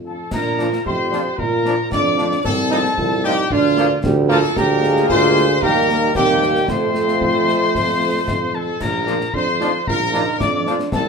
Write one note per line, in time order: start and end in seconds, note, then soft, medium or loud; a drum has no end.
0.00 0.24 F2 medium
0.00 0.29 F3 soft
0.05 0.15 F3 soft
0.05 0.15 D4 soft
0.05 0.15 F4 soft
0.05 0.31 A4 medium
0.05 0.12 A5 medium
0.31 0.77 A#2 medium
0.31 0.58 D4 medium
0.31 0.82 A#4 loud
0.31 0.82 A#5 loud
0.31 concert bass drum medium
0.31 snare medium
0.31 crash medium
0.58 0.68 F3 medium
0.58 0.68 D4 medium
0.58 0.68 F4 medium
0.58 0.84 F4 medium
0.58 snare medium
0.72 snare medium
0.85 1.30 F2 medium
0.85 1.40 G4 loud
0.85 1.35 C5 loud
0.85 1.41 C6 loud
0.85 concert bass drum medium
1.11 1.21 F3 medium
1.11 1.22 F3 medium
1.11 1.21 D4 medium
1.11 1.22 D4 medium
1.11 1.21 F4 medium
1.11 snare medium
1.37 1.83 A#2 loud
1.37 1.91 F4 medium
1.37 1.91 A#4 loud
1.37 1.92 A#5 loud
1.37 concert bass drum medium
1.64 1.74 F3 medium
1.64 1.74 D4 medium
1.64 1.75 D4 medium
1.64 1.74 F4 medium
1.64 snare medium
1.92 2.36 F2 medium
1.92 2.41 D4 medium
1.92 2.41 D5 loud
1.92 2.42 D6 loud
1.92 concert bass drum medium
1.92 snare medium
2.18 2.28 F3 medium
2.18 2.28 D4 medium
2.18 2.28 F4 medium
2.18 snare medium
2.31 snare medium
2.44 2.89 C2 medium
2.44 2.94 C4 medium
2.44 2.69 A4 loud
2.44 2.51 A5 medium
2.44 concert bass drum medium
2.44 snare medium
2.44 crash soft
2.70 2.80 F3 medium
2.70 2.82 F3 medium
2.70 2.80 D#4 loud
2.70 2.81 D#4 medium
2.70 2.82 F4 medium
2.70 3.21 A4 loud
2.70 3.27 A5 loud
2.70 snare medium
2.85 snare medium
2.98 3.42 C2 medium
2.98 3.23 F4 loud
2.98 concert bass drum medium
3.24 3.34 F3 medium
3.24 3.35 F3 medium
3.24 3.49 D#4 medium
3.24 3.34 D#4 loud
3.24 3.35 D#4 medium
3.24 3.35 F4 medium
3.24 3.49 G4 loud
3.24 3.54 G5 loud
3.24 snare medium
3.50 3.95 D2 medium
3.50 4.01 D4 loud
3.50 4.04 F4 loud
3.50 4.05 F5 loud
3.50 concert bass drum medium
3.77 3.87 F3 loud
3.77 3.87 A#3 medium
3.77 3.87 D4 medium
3.77 3.87 F4 medium
3.77 snare medium
4.04 4.44 D2 loud
4.04 4.33 G4 loud
4.04 concert bass drum medium
4.04 snare medium
4.29 4.39 F3 loud
4.29 4.39 A#3 loud
4.29 4.40 A#3 loud
4.29 4.40 D4 medium
4.29 4.40 F4 medium
4.29 4.57 F4 loud
4.29 4.55 A4 loud
4.29 4.37 A5 loud
4.29 snare medium
4.43 snare medium
4.56 5.04 D2 loud
4.56 5.59 G#3 medium
4.56 5.59 A#3 loud
4.56 5.59 F4 loud
4.56 5.07 G4 loud
4.56 5.59 G#4 loud
4.56 5.10 A#4 loud
4.56 5.07 A#5 loud
4.56 concert bass drum medium
4.56 snare medium
4.56 crash soft
4.83 snare medium
4.96 snare medium
5.09 5.57 D2 loud
5.09 5.48 F4 loud
5.09 5.59 C5 loud
5.09 5.60 C6 loud
5.09 concert bass drum medium
5.36 snare medium
5.62 6.10 D#2 loud
5.62 6.15 G3 medium
5.62 6.12 A#3 medium
5.62 6.12 A#3 loud
5.62 6.14 D#4 loud
5.62 5.88 G4 loud
5.62 6.12 G4 loud
5.62 6.16 A#4 loud
5.62 6.18 A#5 loud
5.62 concert bass drum medium
5.89 6.17 A#3 medium
5.89 snare medium
6.15 6.63 D#2 loud
6.15 6.65 G3 loud
6.15 6.65 A#3 medium
6.15 6.42 C4 loud
6.15 6.65 D#4 loud
6.15 6.65 G4 loud
6.15 6.71 G5 loud
6.15 concert bass drum medium
6.15 snare medium
6.42 6.55 A#3 medium
6.42 snare medium
6.55 snare medium
6.68 7.16 F2 medium
6.68 8.55 F3 medium
6.68 8.54 A3 loud
6.68 8.50 A3 medium
6.68 8.55 A3 medium
6.68 8.54 C4 loud
6.68 8.54 F4 loud
6.68 8.54 C5 loud
6.68 8.56 C6 loud
6.68 concert bass drum medium
6.68 snare medium
6.68 crash soft
6.95 snare medium
7.08 snare medium
7.21 7.69 F2 medium
7.21 concert bass drum medium
7.48 snare medium
7.75 8.22 F2 medium
7.75 concert bass drum medium
7.75 snare medium
8.28 8.75 F2 medium
8.28 concert bass drum medium
8.28 snare medium
8.55 8.82 A4 loud
8.55 8.80 A5 loud
8.81 9.25 A#1 medium
8.81 9.31 F4 medium
8.81 9.35 A#4 loud
8.81 9.36 A#5 loud
8.81 concert bass drum medium
8.81 snare medium
8.81 crash soft
9.07 9.17 F3 medium
9.07 9.16 D4 medium
9.07 9.17 D4 medium
9.07 9.17 F4 medium
9.07 snare medium
9.20 snare soft
9.34 9.78 F2 medium
9.34 9.46 D4 medium
9.34 9.84 C5 loud
9.34 9.89 C6 loud
9.34 concert bass drum medium
9.60 9.70 F3 medium
9.60 9.69 D4 medium
9.60 9.70 D4 medium
9.60 9.73 D#4 medium
9.60 9.69 F4 medium
9.60 snare medium
9.87 10.31 A#1 medium
9.87 10.15 F4 medium
9.87 10.37 A#4 loud
9.87 10.39 A#5 loud
9.87 concert bass drum medium
10.13 10.22 F3 loud
10.13 10.23 F3 medium
10.13 10.22 D4 medium
10.13 10.23 D4 medium
10.13 10.41 D#4 medium
10.13 10.23 F4 medium
10.13 snare medium
10.40 10.80 F2 medium
10.40 10.92 D4 medium
10.40 10.79 D5 loud
10.40 10.72 D6 loud
10.40 concert bass drum medium
10.40 snare medium
10.66 10.76 F3 medium
10.66 10.76 F3 loud
10.66 10.76 D4 medium
10.66 10.76 F4 medium
10.66 snare medium
10.79 snare medium
10.92 11.09 C2 loud
10.92 11.09 C4 medium
10.92 11.05 A4 loud
10.92 11.09 A5 loud
10.92 concert bass drum medium
10.92 snare medium
10.92 crash soft